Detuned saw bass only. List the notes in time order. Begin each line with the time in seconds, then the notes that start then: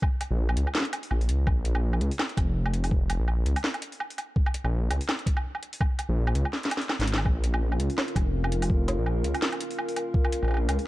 0.31 A#1
0.57 C#2
1.11 A#1
1.29 C#2
1.47 A#1
2.01 C#2
2.37 F1
3.20 A#1
3.46 C#2
4.64 A#1
4.91 C#2
6.09 A#1
6.35 C#2
6.99 G#1
7.25 A#1
7.79 C#2
8.16 F1
8.98 A#1
9.24 C#2
10.43 A#1
10.68 C#2